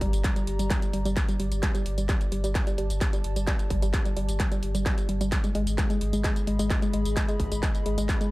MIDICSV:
0, 0, Header, 1, 5, 480
1, 0, Start_track
1, 0, Tempo, 461538
1, 1693, Time_signature, 4, 2, 24, 8
1, 8643, End_track
2, 0, Start_track
2, 0, Title_t, "Ambient pad"
2, 0, Program_c, 0, 92
2, 0, Note_on_c, 0, 67, 70
2, 0, Note_on_c, 0, 74, 97
2, 0, Note_on_c, 0, 82, 76
2, 2349, Note_on_c, 0, 81, 79
2, 2494, Note_off_c, 0, 82, 0
2, 5532, Note_off_c, 0, 81, 0
2, 5533, Note_off_c, 0, 67, 0
2, 5533, Note_off_c, 0, 74, 0
2, 5534, Note_on_c, 0, 68, 69
2, 5660, Note_on_c, 0, 75, 74
2, 6125, Note_on_c, 0, 83, 87
2, 8643, Note_off_c, 0, 68, 0
2, 8643, Note_off_c, 0, 75, 0
2, 8643, Note_off_c, 0, 83, 0
2, 8643, End_track
3, 0, Start_track
3, 0, Title_t, "Synth arpeggio sound"
3, 0, Program_c, 1, 84
3, 12, Note_on_c, 1, 55, 104
3, 79, Note_off_c, 1, 55, 0
3, 252, Note_on_c, 1, 55, 80
3, 319, Note_off_c, 1, 55, 0
3, 377, Note_on_c, 1, 55, 98
3, 439, Note_off_c, 1, 55, 0
3, 617, Note_on_c, 1, 55, 75
3, 679, Note_off_c, 1, 55, 0
3, 733, Note_on_c, 1, 55, 104
3, 799, Note_off_c, 1, 55, 0
3, 973, Note_on_c, 1, 55, 78
3, 1039, Note_off_c, 1, 55, 0
3, 1097, Note_on_c, 1, 55, 105
3, 1159, Note_off_c, 1, 55, 0
3, 1338, Note_on_c, 1, 55, 77
3, 1399, Note_off_c, 1, 55, 0
3, 1453, Note_on_c, 1, 55, 95
3, 1520, Note_off_c, 1, 55, 0
3, 1693, Note_on_c, 1, 55, 83
3, 1760, Note_off_c, 1, 55, 0
3, 1817, Note_on_c, 1, 55, 100
3, 1879, Note_off_c, 1, 55, 0
3, 2057, Note_on_c, 1, 55, 73
3, 2119, Note_off_c, 1, 55, 0
3, 2173, Note_on_c, 1, 55, 96
3, 2240, Note_off_c, 1, 55, 0
3, 2413, Note_on_c, 1, 55, 75
3, 2480, Note_off_c, 1, 55, 0
3, 2537, Note_on_c, 1, 55, 102
3, 2599, Note_off_c, 1, 55, 0
3, 2778, Note_on_c, 1, 55, 77
3, 2839, Note_off_c, 1, 55, 0
3, 2893, Note_on_c, 1, 55, 99
3, 2959, Note_off_c, 1, 55, 0
3, 3133, Note_on_c, 1, 55, 77
3, 3199, Note_off_c, 1, 55, 0
3, 3257, Note_on_c, 1, 55, 99
3, 3319, Note_off_c, 1, 55, 0
3, 3497, Note_on_c, 1, 55, 80
3, 3559, Note_off_c, 1, 55, 0
3, 3613, Note_on_c, 1, 55, 99
3, 3680, Note_off_c, 1, 55, 0
3, 3853, Note_on_c, 1, 55, 77
3, 3920, Note_off_c, 1, 55, 0
3, 3977, Note_on_c, 1, 55, 102
3, 4039, Note_off_c, 1, 55, 0
3, 4218, Note_on_c, 1, 55, 72
3, 4279, Note_off_c, 1, 55, 0
3, 4333, Note_on_c, 1, 55, 97
3, 4400, Note_off_c, 1, 55, 0
3, 4573, Note_on_c, 1, 55, 88
3, 4640, Note_off_c, 1, 55, 0
3, 4697, Note_on_c, 1, 55, 104
3, 4759, Note_off_c, 1, 55, 0
3, 4938, Note_on_c, 1, 55, 79
3, 4999, Note_off_c, 1, 55, 0
3, 5053, Note_on_c, 1, 55, 99
3, 5120, Note_off_c, 1, 55, 0
3, 5292, Note_on_c, 1, 55, 77
3, 5359, Note_off_c, 1, 55, 0
3, 5417, Note_on_c, 1, 55, 106
3, 5479, Note_off_c, 1, 55, 0
3, 5657, Note_on_c, 1, 56, 79
3, 5750, Note_off_c, 1, 56, 0
3, 5772, Note_on_c, 1, 56, 105
3, 5839, Note_off_c, 1, 56, 0
3, 6013, Note_on_c, 1, 56, 75
3, 6113, Note_off_c, 1, 56, 0
3, 6137, Note_on_c, 1, 56, 99
3, 6199, Note_off_c, 1, 56, 0
3, 6377, Note_on_c, 1, 56, 79
3, 6470, Note_off_c, 1, 56, 0
3, 6493, Note_on_c, 1, 56, 102
3, 6559, Note_off_c, 1, 56, 0
3, 6733, Note_on_c, 1, 56, 78
3, 6833, Note_off_c, 1, 56, 0
3, 6857, Note_on_c, 1, 56, 104
3, 6919, Note_off_c, 1, 56, 0
3, 7097, Note_on_c, 1, 56, 77
3, 7190, Note_off_c, 1, 56, 0
3, 7213, Note_on_c, 1, 56, 99
3, 7280, Note_off_c, 1, 56, 0
3, 7453, Note_on_c, 1, 56, 81
3, 7553, Note_off_c, 1, 56, 0
3, 7577, Note_on_c, 1, 56, 105
3, 7639, Note_off_c, 1, 56, 0
3, 7817, Note_on_c, 1, 56, 77
3, 7910, Note_off_c, 1, 56, 0
3, 7933, Note_on_c, 1, 56, 95
3, 8000, Note_off_c, 1, 56, 0
3, 8173, Note_on_c, 1, 56, 74
3, 8273, Note_off_c, 1, 56, 0
3, 8297, Note_on_c, 1, 56, 101
3, 8359, Note_off_c, 1, 56, 0
3, 8537, Note_on_c, 1, 56, 83
3, 8630, Note_off_c, 1, 56, 0
3, 8643, End_track
4, 0, Start_track
4, 0, Title_t, "Sub bass"
4, 0, Program_c, 2, 38
4, 13, Note_on_c, 2, 31, 100
4, 131, Note_off_c, 2, 31, 0
4, 137, Note_on_c, 2, 31, 84
4, 250, Note_off_c, 2, 31, 0
4, 493, Note_on_c, 2, 31, 103
4, 611, Note_off_c, 2, 31, 0
4, 617, Note_on_c, 2, 31, 78
4, 730, Note_off_c, 2, 31, 0
4, 972, Note_on_c, 2, 31, 90
4, 1091, Note_off_c, 2, 31, 0
4, 1097, Note_on_c, 2, 31, 86
4, 1210, Note_off_c, 2, 31, 0
4, 1452, Note_on_c, 2, 31, 101
4, 1571, Note_off_c, 2, 31, 0
4, 1577, Note_on_c, 2, 31, 84
4, 1690, Note_off_c, 2, 31, 0
4, 1932, Note_on_c, 2, 31, 95
4, 2051, Note_off_c, 2, 31, 0
4, 2057, Note_on_c, 2, 31, 88
4, 2170, Note_off_c, 2, 31, 0
4, 2412, Note_on_c, 2, 31, 97
4, 2531, Note_off_c, 2, 31, 0
4, 2537, Note_on_c, 2, 31, 77
4, 2650, Note_off_c, 2, 31, 0
4, 2892, Note_on_c, 2, 31, 94
4, 3011, Note_off_c, 2, 31, 0
4, 3017, Note_on_c, 2, 31, 83
4, 3130, Note_off_c, 2, 31, 0
4, 3372, Note_on_c, 2, 31, 98
4, 3490, Note_off_c, 2, 31, 0
4, 3497, Note_on_c, 2, 31, 84
4, 3610, Note_off_c, 2, 31, 0
4, 3853, Note_on_c, 2, 31, 103
4, 3971, Note_off_c, 2, 31, 0
4, 3977, Note_on_c, 2, 31, 86
4, 4090, Note_off_c, 2, 31, 0
4, 4332, Note_on_c, 2, 31, 102
4, 4451, Note_off_c, 2, 31, 0
4, 4457, Note_on_c, 2, 31, 79
4, 4570, Note_off_c, 2, 31, 0
4, 4813, Note_on_c, 2, 31, 92
4, 4931, Note_off_c, 2, 31, 0
4, 4937, Note_on_c, 2, 31, 85
4, 5050, Note_off_c, 2, 31, 0
4, 5292, Note_on_c, 2, 31, 102
4, 5411, Note_off_c, 2, 31, 0
4, 5417, Note_on_c, 2, 31, 84
4, 5530, Note_off_c, 2, 31, 0
4, 5772, Note_on_c, 2, 32, 100
4, 5890, Note_off_c, 2, 32, 0
4, 5897, Note_on_c, 2, 32, 85
4, 6010, Note_off_c, 2, 32, 0
4, 6252, Note_on_c, 2, 32, 104
4, 6371, Note_off_c, 2, 32, 0
4, 6377, Note_on_c, 2, 32, 81
4, 6490, Note_off_c, 2, 32, 0
4, 6732, Note_on_c, 2, 32, 100
4, 6851, Note_off_c, 2, 32, 0
4, 6857, Note_on_c, 2, 32, 84
4, 6970, Note_off_c, 2, 32, 0
4, 7212, Note_on_c, 2, 32, 100
4, 7331, Note_off_c, 2, 32, 0
4, 7337, Note_on_c, 2, 32, 83
4, 7450, Note_off_c, 2, 32, 0
4, 7693, Note_on_c, 2, 32, 100
4, 7811, Note_off_c, 2, 32, 0
4, 7817, Note_on_c, 2, 32, 84
4, 7930, Note_off_c, 2, 32, 0
4, 8172, Note_on_c, 2, 32, 100
4, 8291, Note_off_c, 2, 32, 0
4, 8297, Note_on_c, 2, 32, 80
4, 8410, Note_off_c, 2, 32, 0
4, 8643, End_track
5, 0, Start_track
5, 0, Title_t, "Drums"
5, 13, Note_on_c, 9, 36, 66
5, 13, Note_on_c, 9, 46, 109
5, 117, Note_off_c, 9, 36, 0
5, 117, Note_off_c, 9, 46, 0
5, 137, Note_on_c, 9, 42, 53
5, 137, Note_on_c, 9, 54, 58
5, 241, Note_off_c, 9, 42, 0
5, 241, Note_off_c, 9, 54, 0
5, 253, Note_on_c, 9, 36, 125
5, 253, Note_on_c, 9, 39, 116
5, 253, Note_on_c, 9, 42, 95
5, 253, Note_on_c, 9, 54, 48
5, 357, Note_off_c, 9, 36, 0
5, 357, Note_off_c, 9, 39, 0
5, 357, Note_off_c, 9, 42, 0
5, 357, Note_off_c, 9, 54, 0
5, 377, Note_on_c, 9, 42, 56
5, 377, Note_on_c, 9, 54, 31
5, 481, Note_off_c, 9, 42, 0
5, 481, Note_off_c, 9, 54, 0
5, 492, Note_on_c, 9, 46, 98
5, 596, Note_off_c, 9, 46, 0
5, 617, Note_on_c, 9, 42, 56
5, 617, Note_on_c, 9, 54, 59
5, 721, Note_off_c, 9, 42, 0
5, 721, Note_off_c, 9, 54, 0
5, 732, Note_on_c, 9, 39, 119
5, 732, Note_on_c, 9, 42, 96
5, 732, Note_on_c, 9, 54, 49
5, 733, Note_on_c, 9, 36, 121
5, 836, Note_off_c, 9, 39, 0
5, 836, Note_off_c, 9, 42, 0
5, 836, Note_off_c, 9, 54, 0
5, 837, Note_off_c, 9, 36, 0
5, 857, Note_on_c, 9, 42, 58
5, 857, Note_on_c, 9, 54, 31
5, 961, Note_off_c, 9, 42, 0
5, 961, Note_off_c, 9, 54, 0
5, 972, Note_on_c, 9, 46, 113
5, 1076, Note_off_c, 9, 46, 0
5, 1097, Note_on_c, 9, 42, 54
5, 1097, Note_on_c, 9, 54, 61
5, 1201, Note_off_c, 9, 42, 0
5, 1201, Note_off_c, 9, 54, 0
5, 1212, Note_on_c, 9, 39, 117
5, 1212, Note_on_c, 9, 42, 97
5, 1212, Note_on_c, 9, 54, 51
5, 1213, Note_on_c, 9, 36, 125
5, 1316, Note_off_c, 9, 39, 0
5, 1316, Note_off_c, 9, 42, 0
5, 1316, Note_off_c, 9, 54, 0
5, 1317, Note_off_c, 9, 36, 0
5, 1337, Note_on_c, 9, 42, 55
5, 1337, Note_on_c, 9, 54, 30
5, 1441, Note_off_c, 9, 42, 0
5, 1441, Note_off_c, 9, 54, 0
5, 1452, Note_on_c, 9, 46, 95
5, 1556, Note_off_c, 9, 46, 0
5, 1577, Note_on_c, 9, 42, 54
5, 1577, Note_on_c, 9, 54, 58
5, 1681, Note_off_c, 9, 42, 0
5, 1681, Note_off_c, 9, 54, 0
5, 1693, Note_on_c, 9, 36, 123
5, 1693, Note_on_c, 9, 39, 119
5, 1693, Note_on_c, 9, 42, 97
5, 1693, Note_on_c, 9, 54, 52
5, 1797, Note_off_c, 9, 36, 0
5, 1797, Note_off_c, 9, 39, 0
5, 1797, Note_off_c, 9, 42, 0
5, 1797, Note_off_c, 9, 54, 0
5, 1817, Note_on_c, 9, 42, 52
5, 1817, Note_on_c, 9, 54, 31
5, 1921, Note_off_c, 9, 42, 0
5, 1921, Note_off_c, 9, 54, 0
5, 1933, Note_on_c, 9, 46, 114
5, 2037, Note_off_c, 9, 46, 0
5, 2057, Note_on_c, 9, 42, 52
5, 2057, Note_on_c, 9, 54, 59
5, 2161, Note_off_c, 9, 42, 0
5, 2161, Note_off_c, 9, 54, 0
5, 2172, Note_on_c, 9, 39, 109
5, 2172, Note_on_c, 9, 42, 91
5, 2172, Note_on_c, 9, 54, 50
5, 2173, Note_on_c, 9, 36, 127
5, 2276, Note_off_c, 9, 39, 0
5, 2276, Note_off_c, 9, 42, 0
5, 2276, Note_off_c, 9, 54, 0
5, 2277, Note_off_c, 9, 36, 0
5, 2297, Note_on_c, 9, 42, 56
5, 2297, Note_on_c, 9, 54, 32
5, 2401, Note_off_c, 9, 42, 0
5, 2401, Note_off_c, 9, 54, 0
5, 2412, Note_on_c, 9, 46, 99
5, 2516, Note_off_c, 9, 46, 0
5, 2537, Note_on_c, 9, 42, 52
5, 2537, Note_on_c, 9, 54, 62
5, 2641, Note_off_c, 9, 42, 0
5, 2641, Note_off_c, 9, 54, 0
5, 2653, Note_on_c, 9, 36, 121
5, 2653, Note_on_c, 9, 39, 115
5, 2653, Note_on_c, 9, 42, 95
5, 2653, Note_on_c, 9, 54, 51
5, 2757, Note_off_c, 9, 36, 0
5, 2757, Note_off_c, 9, 39, 0
5, 2757, Note_off_c, 9, 42, 0
5, 2757, Note_off_c, 9, 54, 0
5, 2777, Note_on_c, 9, 42, 58
5, 2777, Note_on_c, 9, 54, 31
5, 2881, Note_off_c, 9, 42, 0
5, 2881, Note_off_c, 9, 54, 0
5, 2892, Note_on_c, 9, 46, 114
5, 2996, Note_off_c, 9, 46, 0
5, 3017, Note_on_c, 9, 42, 56
5, 3017, Note_on_c, 9, 54, 62
5, 3121, Note_off_c, 9, 42, 0
5, 3121, Note_off_c, 9, 54, 0
5, 3132, Note_on_c, 9, 39, 113
5, 3132, Note_on_c, 9, 42, 91
5, 3132, Note_on_c, 9, 54, 52
5, 3133, Note_on_c, 9, 36, 125
5, 3236, Note_off_c, 9, 39, 0
5, 3236, Note_off_c, 9, 42, 0
5, 3236, Note_off_c, 9, 54, 0
5, 3237, Note_off_c, 9, 36, 0
5, 3257, Note_on_c, 9, 42, 54
5, 3257, Note_on_c, 9, 54, 30
5, 3361, Note_off_c, 9, 42, 0
5, 3361, Note_off_c, 9, 54, 0
5, 3372, Note_on_c, 9, 46, 94
5, 3476, Note_off_c, 9, 46, 0
5, 3497, Note_on_c, 9, 42, 53
5, 3497, Note_on_c, 9, 54, 61
5, 3601, Note_off_c, 9, 42, 0
5, 3601, Note_off_c, 9, 54, 0
5, 3612, Note_on_c, 9, 39, 120
5, 3612, Note_on_c, 9, 42, 96
5, 3612, Note_on_c, 9, 54, 56
5, 3613, Note_on_c, 9, 36, 118
5, 3716, Note_off_c, 9, 39, 0
5, 3716, Note_off_c, 9, 42, 0
5, 3716, Note_off_c, 9, 54, 0
5, 3717, Note_off_c, 9, 36, 0
5, 3737, Note_on_c, 9, 42, 49
5, 3737, Note_on_c, 9, 54, 30
5, 3841, Note_off_c, 9, 42, 0
5, 3841, Note_off_c, 9, 54, 0
5, 3852, Note_on_c, 9, 46, 115
5, 3853, Note_on_c, 9, 36, 67
5, 3956, Note_off_c, 9, 46, 0
5, 3957, Note_off_c, 9, 36, 0
5, 3977, Note_on_c, 9, 42, 50
5, 3977, Note_on_c, 9, 54, 60
5, 4081, Note_off_c, 9, 42, 0
5, 4081, Note_off_c, 9, 54, 0
5, 4093, Note_on_c, 9, 36, 127
5, 4093, Note_on_c, 9, 39, 111
5, 4093, Note_on_c, 9, 42, 87
5, 4093, Note_on_c, 9, 54, 51
5, 4197, Note_off_c, 9, 36, 0
5, 4197, Note_off_c, 9, 39, 0
5, 4197, Note_off_c, 9, 42, 0
5, 4197, Note_off_c, 9, 54, 0
5, 4217, Note_on_c, 9, 42, 53
5, 4217, Note_on_c, 9, 54, 34
5, 4321, Note_off_c, 9, 42, 0
5, 4321, Note_off_c, 9, 54, 0
5, 4332, Note_on_c, 9, 46, 93
5, 4436, Note_off_c, 9, 46, 0
5, 4457, Note_on_c, 9, 42, 49
5, 4457, Note_on_c, 9, 54, 61
5, 4561, Note_off_c, 9, 42, 0
5, 4561, Note_off_c, 9, 54, 0
5, 4573, Note_on_c, 9, 36, 119
5, 4573, Note_on_c, 9, 39, 113
5, 4573, Note_on_c, 9, 42, 93
5, 4573, Note_on_c, 9, 54, 52
5, 4677, Note_off_c, 9, 36, 0
5, 4677, Note_off_c, 9, 39, 0
5, 4677, Note_off_c, 9, 42, 0
5, 4677, Note_off_c, 9, 54, 0
5, 4697, Note_on_c, 9, 42, 55
5, 4697, Note_on_c, 9, 54, 34
5, 4801, Note_off_c, 9, 42, 0
5, 4801, Note_off_c, 9, 54, 0
5, 4812, Note_on_c, 9, 46, 110
5, 4916, Note_off_c, 9, 46, 0
5, 4937, Note_on_c, 9, 42, 51
5, 4937, Note_on_c, 9, 54, 66
5, 5041, Note_off_c, 9, 42, 0
5, 5041, Note_off_c, 9, 54, 0
5, 5052, Note_on_c, 9, 39, 114
5, 5052, Note_on_c, 9, 42, 87
5, 5052, Note_on_c, 9, 54, 51
5, 5053, Note_on_c, 9, 36, 125
5, 5156, Note_off_c, 9, 39, 0
5, 5156, Note_off_c, 9, 42, 0
5, 5156, Note_off_c, 9, 54, 0
5, 5157, Note_off_c, 9, 36, 0
5, 5177, Note_on_c, 9, 42, 52
5, 5177, Note_on_c, 9, 54, 31
5, 5281, Note_off_c, 9, 42, 0
5, 5281, Note_off_c, 9, 54, 0
5, 5292, Note_on_c, 9, 46, 94
5, 5396, Note_off_c, 9, 46, 0
5, 5417, Note_on_c, 9, 42, 50
5, 5417, Note_on_c, 9, 54, 63
5, 5521, Note_off_c, 9, 42, 0
5, 5521, Note_off_c, 9, 54, 0
5, 5532, Note_on_c, 9, 39, 116
5, 5532, Note_on_c, 9, 42, 91
5, 5532, Note_on_c, 9, 54, 56
5, 5533, Note_on_c, 9, 36, 114
5, 5636, Note_off_c, 9, 39, 0
5, 5636, Note_off_c, 9, 42, 0
5, 5636, Note_off_c, 9, 54, 0
5, 5637, Note_off_c, 9, 36, 0
5, 5657, Note_on_c, 9, 42, 48
5, 5657, Note_on_c, 9, 54, 31
5, 5761, Note_off_c, 9, 42, 0
5, 5761, Note_off_c, 9, 54, 0
5, 5772, Note_on_c, 9, 46, 111
5, 5876, Note_off_c, 9, 46, 0
5, 5896, Note_on_c, 9, 42, 49
5, 5896, Note_on_c, 9, 54, 61
5, 6000, Note_off_c, 9, 42, 0
5, 6000, Note_off_c, 9, 54, 0
5, 6012, Note_on_c, 9, 39, 110
5, 6012, Note_on_c, 9, 42, 83
5, 6012, Note_on_c, 9, 54, 56
5, 6013, Note_on_c, 9, 36, 126
5, 6116, Note_off_c, 9, 39, 0
5, 6116, Note_off_c, 9, 42, 0
5, 6116, Note_off_c, 9, 54, 0
5, 6117, Note_off_c, 9, 36, 0
5, 6137, Note_on_c, 9, 42, 51
5, 6137, Note_on_c, 9, 54, 33
5, 6241, Note_off_c, 9, 42, 0
5, 6241, Note_off_c, 9, 54, 0
5, 6252, Note_on_c, 9, 46, 95
5, 6356, Note_off_c, 9, 46, 0
5, 6377, Note_on_c, 9, 42, 49
5, 6377, Note_on_c, 9, 54, 64
5, 6481, Note_off_c, 9, 42, 0
5, 6481, Note_off_c, 9, 54, 0
5, 6492, Note_on_c, 9, 39, 114
5, 6492, Note_on_c, 9, 42, 88
5, 6492, Note_on_c, 9, 54, 55
5, 6493, Note_on_c, 9, 36, 114
5, 6596, Note_off_c, 9, 39, 0
5, 6596, Note_off_c, 9, 42, 0
5, 6596, Note_off_c, 9, 54, 0
5, 6597, Note_off_c, 9, 36, 0
5, 6617, Note_on_c, 9, 42, 52
5, 6617, Note_on_c, 9, 54, 34
5, 6721, Note_off_c, 9, 42, 0
5, 6721, Note_off_c, 9, 54, 0
5, 6732, Note_on_c, 9, 46, 108
5, 6836, Note_off_c, 9, 46, 0
5, 6857, Note_on_c, 9, 42, 52
5, 6857, Note_on_c, 9, 54, 67
5, 6961, Note_off_c, 9, 42, 0
5, 6961, Note_off_c, 9, 54, 0
5, 6972, Note_on_c, 9, 39, 111
5, 6972, Note_on_c, 9, 42, 91
5, 6972, Note_on_c, 9, 54, 56
5, 6973, Note_on_c, 9, 36, 121
5, 7076, Note_off_c, 9, 39, 0
5, 7076, Note_off_c, 9, 42, 0
5, 7076, Note_off_c, 9, 54, 0
5, 7077, Note_off_c, 9, 36, 0
5, 7097, Note_on_c, 9, 42, 47
5, 7097, Note_on_c, 9, 54, 33
5, 7201, Note_off_c, 9, 42, 0
5, 7201, Note_off_c, 9, 54, 0
5, 7212, Note_on_c, 9, 46, 97
5, 7316, Note_off_c, 9, 46, 0
5, 7337, Note_on_c, 9, 42, 48
5, 7337, Note_on_c, 9, 54, 67
5, 7441, Note_off_c, 9, 42, 0
5, 7441, Note_off_c, 9, 54, 0
5, 7452, Note_on_c, 9, 39, 119
5, 7452, Note_on_c, 9, 42, 92
5, 7452, Note_on_c, 9, 54, 60
5, 7453, Note_on_c, 9, 36, 108
5, 7556, Note_off_c, 9, 39, 0
5, 7556, Note_off_c, 9, 42, 0
5, 7556, Note_off_c, 9, 54, 0
5, 7557, Note_off_c, 9, 36, 0
5, 7577, Note_on_c, 9, 42, 49
5, 7577, Note_on_c, 9, 54, 31
5, 7681, Note_off_c, 9, 42, 0
5, 7681, Note_off_c, 9, 54, 0
5, 7692, Note_on_c, 9, 46, 104
5, 7693, Note_on_c, 9, 36, 60
5, 7796, Note_off_c, 9, 46, 0
5, 7797, Note_off_c, 9, 36, 0
5, 7817, Note_on_c, 9, 42, 50
5, 7817, Note_on_c, 9, 54, 62
5, 7921, Note_off_c, 9, 42, 0
5, 7921, Note_off_c, 9, 54, 0
5, 7932, Note_on_c, 9, 39, 111
5, 7932, Note_on_c, 9, 42, 84
5, 7932, Note_on_c, 9, 54, 54
5, 7933, Note_on_c, 9, 36, 117
5, 8036, Note_off_c, 9, 39, 0
5, 8036, Note_off_c, 9, 42, 0
5, 8036, Note_off_c, 9, 54, 0
5, 8037, Note_off_c, 9, 36, 0
5, 8057, Note_on_c, 9, 42, 52
5, 8057, Note_on_c, 9, 54, 33
5, 8161, Note_off_c, 9, 42, 0
5, 8161, Note_off_c, 9, 54, 0
5, 8173, Note_on_c, 9, 46, 92
5, 8277, Note_off_c, 9, 46, 0
5, 8297, Note_on_c, 9, 42, 48
5, 8297, Note_on_c, 9, 54, 66
5, 8401, Note_off_c, 9, 42, 0
5, 8401, Note_off_c, 9, 54, 0
5, 8413, Note_on_c, 9, 36, 109
5, 8413, Note_on_c, 9, 39, 116
5, 8413, Note_on_c, 9, 42, 84
5, 8413, Note_on_c, 9, 54, 56
5, 8517, Note_off_c, 9, 36, 0
5, 8517, Note_off_c, 9, 39, 0
5, 8517, Note_off_c, 9, 42, 0
5, 8517, Note_off_c, 9, 54, 0
5, 8537, Note_on_c, 9, 42, 54
5, 8537, Note_on_c, 9, 54, 36
5, 8641, Note_off_c, 9, 42, 0
5, 8641, Note_off_c, 9, 54, 0
5, 8643, End_track
0, 0, End_of_file